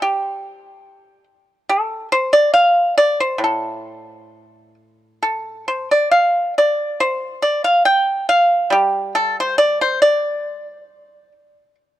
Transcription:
0.00 0.85 G3 soft
0.00 1.24 G4 medium
1.69 2.08 A4 medium
2.12 2.31 C5 medium
2.33 2.52 D5 medium
2.54 2.94 F5 medium
2.98 3.18 D5 medium
3.20 3.41 C5 medium
3.38 6.10 A2 medium
3.44 4.74 A4 medium
5.22 5.64 A4 medium
5.68 5.88 C5 medium
5.91 6.11 D5 medium
6.11 6.53 F5 medium
6.58 6.98 D5 medium
7.00 7.41 C5 medium
7.42 7.63 D5 medium
7.64 7.85 F5 medium
7.85 8.26 G5 medium
8.29 8.69 F5 medium
8.70 11.32 G3 medium
8.70 9.12 G4 medium
9.15 9.35 A4 medium
9.40 9.58 C5 medium
9.58 9.78 D5 medium
9.81 10.00 C5 medium
10.02 11.75 D5 medium

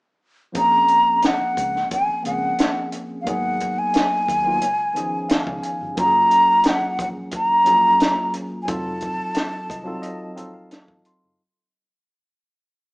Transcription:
0.52 0.81 A#1 medium
0.52 1.42 F3 medium
0.52 1.42 A#3 medium
0.52 1.43 C4 medium
0.52 1.43 C#4 medium
0.52 1.44 G#4 medium
0.52 kick loud
0.52 closed hi-hat medium
0.57 1.27 A#5 medium
0.88 closed hi-hat medium
1.22 1.92 F#5 medium
1.22 snare medium
1.22 closed hi-hat medium
1.40 muted fingered electric bass stroke soft
1.57 1.83 C#2 medium
1.57 kick medium
1.57 closed hi-hat medium
1.76 snare soft
1.91 2.24 G#5 medium
1.91 kick medium
1.91 closed hi-hat medium
2.09 muted fingered electric bass stroke soft
2.22 2.51 C#2 medium
2.22 2.90 F3 medium
2.22 2.90 A#3 medium
2.22 2.90 C4 medium
2.22 2.91 C#4 medium
2.22 2.91 G#4 medium
2.22 2.89 F#5 medium
2.22 closed hi-hat medium
2.59 snare medium
2.59 closed hi-hat medium
2.92 closed hi-hat medium
3.21 4.02 F#3 medium
3.21 3.29 F5 medium
3.26 3.78 G#1 medium
3.26 4.03 A#3 medium
3.26 4.03 B3 medium
3.26 4.04 D#4 medium
3.26 4.04 G#4 medium
3.26 3.80 F#5 medium
3.26 kick medium
3.26 closed hi-hat medium
3.60 kick medium
3.60 closed hi-hat medium
3.79 5.64 G#5 medium
3.94 snare medium
3.94 closed hi-hat medium
4.28 4.63 D#2 medium
4.28 kick medium
4.28 closed hi-hat medium
4.43 4.61 F#3 medium
4.43 4.61 A#3 medium
4.43 4.62 B3 medium
4.43 4.63 D#4 medium
4.47 4.63 F4 medium
4.62 4.97 C#2 medium
4.62 closed hi-hat medium
4.93 5.22 B1 medium
4.93 5.01 D#3 medium
4.93 5.61 B3 medium
4.93 5.61 C#4 medium
4.93 5.62 D#4 medium
4.93 closed hi-hat medium
4.97 5.64 F3 medium
4.97 5.63 G#4 medium
5.29 5.61 F5 medium
5.29 muted fingered electric bass stroke soft
5.29 snare loud
5.29 closed hi-hat medium
5.47 5.60 C#2 medium
5.47 kick medium
5.63 5.95 G#5 medium
5.63 closed hi-hat medium
5.81 5.94 G1 medium
5.95 6.23 F#1 medium
5.95 6.84 F#3 medium
5.95 6.84 A#3 medium
5.95 6.85 C#4 medium
5.95 6.86 F4 medium
5.95 kick loud
5.95 closed hi-hat medium
5.99 6.05 F#4 medium
5.99 6.70 A#5 medium
6.06 6.89 G#4 medium
6.31 closed hi-hat medium
6.64 snare loud
6.64 closed hi-hat medium
6.68 7.01 F#5 medium
6.82 muted fingered electric bass stroke soft
6.99 7.25 A#1 medium
6.99 7.09 F#5 medium
6.99 kick medium
6.99 closed hi-hat medium
7.32 8.32 A#5 medium
7.32 kick medium
7.32 closed hi-hat medium
7.50 muted fingered electric bass stroke soft
7.64 7.93 A#1 medium
7.64 8.31 F#3 medium
7.64 8.32 A#3 medium
7.64 8.32 C#4 medium
7.64 8.33 F4 medium
7.64 8.33 G#4 medium
7.64 closed hi-hat medium
8.00 snare medium
8.00 closed hi-hat medium
8.34 closed hi-hat medium
8.63 9.44 F#3 medium
8.63 8.71 G#5 medium
8.67 9.19 F1 medium
8.67 9.44 C4 medium
8.67 9.45 D#4 medium
8.67 9.45 F4 medium
8.67 9.46 A4 medium
8.67 10.73 A5 loud
8.67 kick loud
8.67 closed hi-hat medium
9.01 kick medium
9.01 closed hi-hat medium
9.35 snare medium
9.35 closed hi-hat medium
9.70 9.96 C2 medium
9.70 9.86 D#5 medium
9.70 kick medium
9.70 closed hi-hat medium
9.84 10.18 F#3 medium
9.84 10.19 C4 medium
9.84 10.19 D#4 medium
9.84 10.20 F4 medium
9.84 10.20 A4 medium
9.84 10.02 F5 medium
10.02 10.35 D#5 medium
10.02 closed hi-hat medium
10.35 10.64 A#1 medium
10.35 11.02 F#3 medium
10.35 11.03 C4 medium
10.35 11.03 D#4 medium
10.35 11.04 F4 medium
10.35 11.04 A4 medium
10.35 10.52 F5 medium
10.35 closed hi-hat medium
10.54 10.70 F5 medium
10.71 11.03 A5 medium
10.71 muted fingered electric bass stroke soft
10.71 snare loud
10.71 closed hi-hat medium
10.88 11.01 A1 medium
10.88 kick medium
11.05 11.38 C6 medium
11.05 closed hi-hat medium
11.24 11.36 F#1 medium

